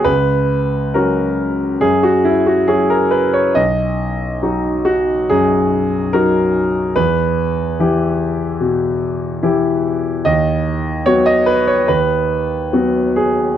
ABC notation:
X:1
M:4/4
L:1/16
Q:1/4=70
K:B
V:1 name="Grand piano"
B4 A4 G F E F G A B c | d6 F2 G4 A4 | B12- B2 z2 | d4 c d B c B6 G2 |]
V:2 name="Grand piano" clef=bass
C,,4 [F,CF]4 F,,4 [F,CF]4 | B,,,4 [F,DF]4 F,,4 [F,DF]4 | E,,4 [E,E=G]4 B,,4 [E,EG]4 | D,,4 [F,B,F]4 D,,4 [F,B,F]4 |]